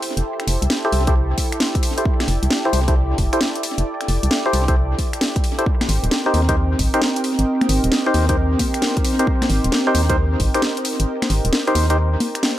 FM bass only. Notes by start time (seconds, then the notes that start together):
0.17 F1
0.47 F1
0.62 C2
0.93 C2
2.28 F1
2.43 C2
2.73 C2
3.18 F1
3.78 F1
4.08 F1
4.23 C2
4.53 C2
5.89 G#1
6.04 D#1
6.34 D#2
6.79 G#1
7.39 G#1
7.69 G#1
7.84 D#1
8.14 D#2
9.50 G#1
9.65 D#1
9.95 D#2
10.40 G#1
11.00 G#1
11.30 G#1
11.45 D#1
11.75 D#2